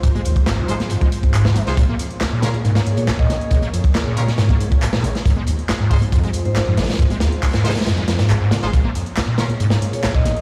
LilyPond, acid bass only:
\new Staff \with { instrumentName = "Acid bass" } { \clef bass \time 4/4 \key bes \minor \tempo 4 = 138 aes,16 aes16 r8 aes,,16 aes16 ees16 r16 aes,16 aes16 r8 aes,,16 aes16 ees16 r16 | bes,16 bes16 r8 bes,,16 bes,16 f16 r16 bes,16 bes16 r8 bes,,16 bes,16 f16 r16 | bes,16 bes16 r8 bes,,16 bes,16 f16 r16 bes,16 bes16 r8 bes,,16 bes,16 f16 r16 | aes,16 aes16 r8 aes,,16 aes,16 ees16 r16 aes,16 aes16 r8 aes,,16 aes,16 ees16 r16 |
aes,16 aes16 r8 aes,,16 aes,16 ees16 r16 aes,16 aes16 r8 aes,,16 aes,16 ees16 r16 | bes,16 bes16 r8 bes,,16 bes,16 f16 r16 bes,16 bes16 r8 bes,,16 bes,16 f16 r16 | }